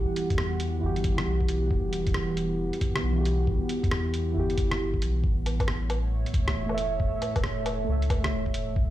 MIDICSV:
0, 0, Header, 1, 5, 480
1, 0, Start_track
1, 0, Tempo, 441176
1, 1855, Time_signature, 4, 2, 24, 8
1, 9685, End_track
2, 0, Start_track
2, 0, Title_t, "Synth keys"
2, 0, Program_c, 0, 88
2, 0, Note_on_c, 0, 52, 82
2, 0, Note_on_c, 0, 64, 80
2, 0, Note_on_c, 0, 66, 80
2, 0, Note_on_c, 0, 67, 95
2, 838, Note_off_c, 0, 52, 0
2, 851, Note_on_c, 0, 52, 89
2, 864, Note_off_c, 0, 64, 0
2, 877, Note_on_c, 0, 64, 83
2, 882, Note_off_c, 0, 66, 0
2, 897, Note_off_c, 0, 67, 0
2, 905, Note_on_c, 0, 66, 85
2, 935, Note_on_c, 0, 67, 104
2, 3390, Note_off_c, 0, 52, 0
2, 3403, Note_off_c, 0, 64, 0
2, 3403, Note_on_c, 0, 52, 91
2, 3417, Note_off_c, 0, 66, 0
2, 3432, Note_off_c, 0, 67, 0
2, 3434, Note_on_c, 0, 64, 80
2, 3458, Note_on_c, 0, 66, 81
2, 3488, Note_on_c, 0, 67, 95
2, 4684, Note_off_c, 0, 52, 0
2, 4697, Note_on_c, 0, 52, 94
2, 4706, Note_off_c, 0, 64, 0
2, 4719, Note_off_c, 0, 66, 0
2, 4723, Note_on_c, 0, 64, 86
2, 4733, Note_off_c, 0, 67, 0
2, 4753, Note_on_c, 0, 66, 81
2, 4781, Note_on_c, 0, 67, 98
2, 5319, Note_off_c, 0, 52, 0
2, 5332, Note_off_c, 0, 64, 0
2, 5347, Note_off_c, 0, 66, 0
2, 5361, Note_off_c, 0, 67, 0
2, 7251, Note_on_c, 0, 57, 87
2, 7278, Note_on_c, 0, 69, 82
2, 7307, Note_on_c, 0, 73, 83
2, 7334, Note_on_c, 0, 76, 94
2, 8520, Note_off_c, 0, 57, 0
2, 8533, Note_on_c, 0, 57, 91
2, 8546, Note_off_c, 0, 69, 0
2, 8559, Note_on_c, 0, 69, 83
2, 8563, Note_off_c, 0, 73, 0
2, 8577, Note_off_c, 0, 76, 0
2, 8592, Note_on_c, 0, 73, 83
2, 8620, Note_on_c, 0, 76, 102
2, 9504, Note_off_c, 0, 57, 0
2, 9517, Note_off_c, 0, 69, 0
2, 9533, Note_off_c, 0, 73, 0
2, 9547, Note_off_c, 0, 76, 0
2, 9685, End_track
3, 0, Start_track
3, 0, Title_t, "Ambient pad"
3, 0, Program_c, 1, 92
3, 0, Note_on_c, 1, 52, 68
3, 0, Note_on_c, 1, 55, 68
3, 0, Note_on_c, 1, 59, 86
3, 0, Note_on_c, 1, 78, 86
3, 5690, Note_off_c, 1, 52, 0
3, 5691, Note_on_c, 1, 45, 84
3, 6026, Note_on_c, 1, 73, 94
3, 6079, Note_on_c, 1, 76, 91
3, 6372, Note_off_c, 1, 59, 0
3, 6415, Note_on_c, 1, 57, 89
3, 6544, Note_off_c, 1, 55, 0
3, 6657, Note_off_c, 1, 78, 0
3, 9533, Note_off_c, 1, 45, 0
3, 9533, Note_on_c, 1, 47, 76
3, 9543, Note_off_c, 1, 57, 0
3, 9544, Note_off_c, 1, 73, 0
3, 9685, Note_off_c, 1, 47, 0
3, 9685, Note_off_c, 1, 76, 0
3, 9685, End_track
4, 0, Start_track
4, 0, Title_t, "Sub bass"
4, 0, Program_c, 2, 38
4, 330, Note_on_c, 2, 40, 77
4, 884, Note_off_c, 2, 40, 0
4, 896, Note_on_c, 2, 31, 79
4, 1364, Note_off_c, 2, 31, 0
4, 1374, Note_on_c, 2, 35, 101
4, 1843, Note_off_c, 2, 35, 0
4, 1858, Note_on_c, 2, 28, 94
4, 2951, Note_off_c, 2, 28, 0
4, 3057, Note_on_c, 2, 31, 91
4, 3282, Note_off_c, 2, 31, 0
4, 3296, Note_on_c, 2, 35, 91
4, 3910, Note_off_c, 2, 35, 0
4, 4176, Note_on_c, 2, 40, 80
4, 4727, Note_off_c, 2, 40, 0
4, 4740, Note_on_c, 2, 31, 80
4, 5459, Note_on_c, 2, 35, 100
4, 5475, Note_off_c, 2, 31, 0
4, 5683, Note_off_c, 2, 35, 0
4, 5697, Note_on_c, 2, 33, 98
4, 6790, Note_off_c, 2, 33, 0
4, 6897, Note_on_c, 2, 37, 95
4, 7122, Note_off_c, 2, 37, 0
4, 7136, Note_on_c, 2, 28, 90
4, 7750, Note_off_c, 2, 28, 0
4, 8008, Note_on_c, 2, 28, 78
4, 8563, Note_off_c, 2, 28, 0
4, 8579, Note_on_c, 2, 37, 79
4, 9046, Note_off_c, 2, 37, 0
4, 9064, Note_on_c, 2, 28, 101
4, 9525, Note_off_c, 2, 28, 0
4, 9532, Note_on_c, 2, 35, 101
4, 9685, Note_off_c, 2, 35, 0
4, 9685, End_track
5, 0, Start_track
5, 0, Title_t, "Drums"
5, 177, Note_on_c, 9, 42, 52
5, 286, Note_off_c, 9, 42, 0
5, 328, Note_on_c, 9, 36, 95
5, 330, Note_on_c, 9, 42, 31
5, 413, Note_on_c, 9, 37, 98
5, 437, Note_off_c, 9, 36, 0
5, 439, Note_off_c, 9, 42, 0
5, 522, Note_off_c, 9, 37, 0
5, 651, Note_on_c, 9, 42, 56
5, 760, Note_off_c, 9, 42, 0
5, 1047, Note_on_c, 9, 42, 30
5, 1133, Note_off_c, 9, 42, 0
5, 1133, Note_on_c, 9, 42, 54
5, 1135, Note_on_c, 9, 36, 101
5, 1242, Note_off_c, 9, 42, 0
5, 1244, Note_off_c, 9, 36, 0
5, 1285, Note_on_c, 9, 37, 103
5, 1394, Note_off_c, 9, 37, 0
5, 1529, Note_on_c, 9, 36, 60
5, 1615, Note_on_c, 9, 42, 53
5, 1638, Note_off_c, 9, 36, 0
5, 1724, Note_off_c, 9, 42, 0
5, 1856, Note_on_c, 9, 36, 118
5, 1965, Note_off_c, 9, 36, 0
5, 2097, Note_on_c, 9, 42, 52
5, 2205, Note_off_c, 9, 42, 0
5, 2248, Note_on_c, 9, 42, 30
5, 2252, Note_on_c, 9, 36, 97
5, 2332, Note_on_c, 9, 37, 99
5, 2357, Note_off_c, 9, 42, 0
5, 2361, Note_off_c, 9, 36, 0
5, 2441, Note_off_c, 9, 37, 0
5, 2579, Note_on_c, 9, 42, 51
5, 2687, Note_off_c, 9, 42, 0
5, 2972, Note_on_c, 9, 42, 29
5, 3059, Note_on_c, 9, 36, 105
5, 3060, Note_off_c, 9, 42, 0
5, 3060, Note_on_c, 9, 42, 52
5, 3168, Note_off_c, 9, 36, 0
5, 3169, Note_off_c, 9, 42, 0
5, 3215, Note_on_c, 9, 37, 104
5, 3324, Note_off_c, 9, 37, 0
5, 3541, Note_on_c, 9, 42, 53
5, 3650, Note_off_c, 9, 42, 0
5, 3779, Note_on_c, 9, 36, 111
5, 3888, Note_off_c, 9, 36, 0
5, 4018, Note_on_c, 9, 42, 51
5, 4127, Note_off_c, 9, 42, 0
5, 4172, Note_on_c, 9, 36, 95
5, 4177, Note_on_c, 9, 42, 28
5, 4259, Note_on_c, 9, 37, 103
5, 4281, Note_off_c, 9, 36, 0
5, 4285, Note_off_c, 9, 42, 0
5, 4367, Note_off_c, 9, 37, 0
5, 4501, Note_on_c, 9, 42, 49
5, 4610, Note_off_c, 9, 42, 0
5, 4894, Note_on_c, 9, 42, 28
5, 4978, Note_off_c, 9, 42, 0
5, 4978, Note_on_c, 9, 36, 100
5, 4978, Note_on_c, 9, 42, 49
5, 5087, Note_off_c, 9, 36, 0
5, 5087, Note_off_c, 9, 42, 0
5, 5129, Note_on_c, 9, 37, 101
5, 5238, Note_off_c, 9, 37, 0
5, 5371, Note_on_c, 9, 36, 57
5, 5460, Note_on_c, 9, 42, 53
5, 5480, Note_off_c, 9, 36, 0
5, 5569, Note_off_c, 9, 42, 0
5, 5697, Note_on_c, 9, 36, 107
5, 5806, Note_off_c, 9, 36, 0
5, 5942, Note_on_c, 9, 42, 51
5, 5942, Note_on_c, 9, 77, 33
5, 6051, Note_off_c, 9, 42, 0
5, 6051, Note_off_c, 9, 77, 0
5, 6091, Note_on_c, 9, 36, 94
5, 6094, Note_on_c, 9, 42, 27
5, 6094, Note_on_c, 9, 77, 62
5, 6178, Note_on_c, 9, 37, 94
5, 6199, Note_off_c, 9, 36, 0
5, 6202, Note_off_c, 9, 42, 0
5, 6202, Note_off_c, 9, 77, 0
5, 6286, Note_off_c, 9, 37, 0
5, 6417, Note_on_c, 9, 42, 47
5, 6417, Note_on_c, 9, 77, 57
5, 6526, Note_off_c, 9, 42, 0
5, 6526, Note_off_c, 9, 77, 0
5, 6814, Note_on_c, 9, 42, 27
5, 6894, Note_on_c, 9, 36, 98
5, 6899, Note_off_c, 9, 42, 0
5, 6899, Note_on_c, 9, 42, 49
5, 7003, Note_off_c, 9, 36, 0
5, 7007, Note_off_c, 9, 42, 0
5, 7046, Note_on_c, 9, 37, 97
5, 7155, Note_off_c, 9, 37, 0
5, 7283, Note_on_c, 9, 77, 46
5, 7373, Note_on_c, 9, 42, 52
5, 7392, Note_off_c, 9, 77, 0
5, 7482, Note_off_c, 9, 42, 0
5, 7613, Note_on_c, 9, 36, 104
5, 7722, Note_off_c, 9, 36, 0
5, 7853, Note_on_c, 9, 42, 47
5, 7853, Note_on_c, 9, 77, 35
5, 7962, Note_off_c, 9, 42, 0
5, 7962, Note_off_c, 9, 77, 0
5, 8005, Note_on_c, 9, 42, 29
5, 8005, Note_on_c, 9, 77, 61
5, 8007, Note_on_c, 9, 36, 92
5, 8090, Note_on_c, 9, 37, 92
5, 8114, Note_off_c, 9, 42, 0
5, 8114, Note_off_c, 9, 77, 0
5, 8116, Note_off_c, 9, 36, 0
5, 8199, Note_off_c, 9, 37, 0
5, 8332, Note_on_c, 9, 42, 49
5, 8332, Note_on_c, 9, 77, 60
5, 8441, Note_off_c, 9, 42, 0
5, 8441, Note_off_c, 9, 77, 0
5, 8729, Note_on_c, 9, 42, 28
5, 8812, Note_on_c, 9, 36, 97
5, 8814, Note_off_c, 9, 42, 0
5, 8814, Note_on_c, 9, 42, 48
5, 8814, Note_on_c, 9, 77, 56
5, 8921, Note_off_c, 9, 36, 0
5, 8923, Note_off_c, 9, 42, 0
5, 8923, Note_off_c, 9, 77, 0
5, 8968, Note_on_c, 9, 37, 98
5, 9077, Note_off_c, 9, 37, 0
5, 9207, Note_on_c, 9, 36, 54
5, 9293, Note_on_c, 9, 42, 52
5, 9316, Note_off_c, 9, 36, 0
5, 9402, Note_off_c, 9, 42, 0
5, 9533, Note_on_c, 9, 36, 111
5, 9641, Note_off_c, 9, 36, 0
5, 9685, End_track
0, 0, End_of_file